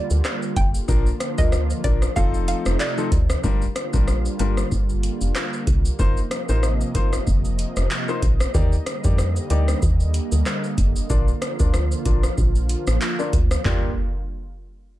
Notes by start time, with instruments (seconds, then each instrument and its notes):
Already playing: analog synth pad D3 G3 A#3 F4
0.10 fm bass D2, shaker
0.24 cross-stick, clap, shaker
0.42 shaker
0.56 fm bass F1, synth pluck G5, kick, closed hi-hat, shaker
0.74 shaker
0.88 fm bass A#1, analog synth pad D3 F3 A#3 F4, grand piano F3 A#3 D4 A#4, kick, shaker
1.07 shaker
1.20 cross-stick, closed hi-hat, shaker
1.38 fm bass D2, grand piano F3 A#3 D4 A#4, synth pluck D#5, kick, shaker
1.52 cross-stick, shaker
1.70 shaker
1.84 fm bass A#1, grand piano F3 A#3 D4 A#4, synth pluck D5, kick, closed hi-hat, shaker
2.02 cross-stick, shaker
2.16 fm bass F1, analog synth pad C3 A3 D#4, grand piano F3 C4 D#4 A4, synth pluck F5, kick, shaker
2.34 shaker
2.48 synth pluck F5, closed hi-hat, shaker
2.66 fm bass F1, cross-stick, shaker
2.80 synth pluck D5, clap, shaker
2.97 grand piano F3 C4 D#4 A4, shaker
3.12 fm bass D2, kick, closed hi-hat, shaker
3.30 cross-stick, shaker
3.43 fm bass G1, analog synth pad D3 G3 A#3 F4, grand piano G3 D4 F4 A#4, kick, shaker
3.62 shaker
3.76 cross-stick, closed hi-hat, shaker
3.93 fm bass A#1, grand piano G3 D4 F4 A#4, kick, shaker
4.08 cross-stick, shaker
4.25 shaker
4.39 fm bass G1, grand piano G3 D4 F4 A#4, closed hi-hat, shaker
4.57 cross-stick, shaker
4.72 fm bass G1, kick, shaker
4.89 shaker
5.03 closed hi-hat, shaker
5.21 fm bass F1, shaker
5.35 cross-stick, clap, shaker
5.53 shaker
5.67 fm bass C2, kick, closed hi-hat, shaker
5.85 shaker
5.99 fm bass F1, analog synth pad C3 F3 D#5, grand piano A#3 D#4 F4 C5, kick, shaker
6.17 shaker
6.31 cross-stick, closed hi-hat, shaker
6.49 fm bass A1, grand piano A#3 D#4 F4 C5, shaker
6.63 cross-stick, shaker
6.81 shaker
6.95 fm bass G1, grand piano A#3 D#4 F4 C5, kick, closed hi-hat, shaker
7.13 cross-stick, shaker
7.27 fm bass F1, kick, shaker
7.45 shaker
7.59 closed hi-hat, shaker
7.76 fm bass F1, cross-stick, shaker
7.90 clap, shaker
8.08 grand piano A#3 D#4 F4 C5, shaker
8.22 fm bass A#1, kick, closed hi-hat, shaker
8.40 cross-stick, shaker
8.54 fm bass D#2, analog synth pad D3 G3 A#3, grand piano A#3 D#4 G4 D5, kick, shaker
8.73 shaker
8.86 cross-stick, closed hi-hat, shaker
9.04 fm bass F2, grand piano A#3 D#4 G4 D5, kick, shaker
9.18 cross-stick, shaker
9.36 shaker
9.50 fm bass D2, grand piano A#3 D#4 G4 D5, closed hi-hat, shaker
9.68 cross-stick, shaker
9.82 fm bass D#2, kick, shaker
10.00 shaker
10.14 closed hi-hat, shaker
10.32 fm bass D2, shaker
10.46 cross-stick, clap, shaker
10.64 shaker
10.78 fm bass F1, kick, closed hi-hat, shaker
10.96 shaker
11.10 fm bass A#1, analog synth pad F3 F4, grand piano A#3 D4 F4 D5, kick, shaker
11.28 shaker
11.42 cross-stick, closed hi-hat, shaker
11.59 fm bass D2, grand piano A#3 D4 F4 D5, kick, shaker
11.74 cross-stick, shaker
11.92 shaker
12.05 fm bass A#1, grand piano A#3 D4 F4 D5, kick, closed hi-hat, shaker
12.23 cross-stick, shaker
12.38 fm bass A#1, kick, shaker
12.55 shaker
12.69 closed hi-hat, shaker
12.87 fm bass A1, cross-stick, shaker
13.01 clap, shaker
13.19 grand piano A#3 D4 F4 D5, shaker
13.33 fm bass D2, kick, closed hi-hat, shaker
13.51 cross-stick, shaker
13.65 fm bass G1, grand piano A#3 F4 G4 D5, kick, clap, floor tom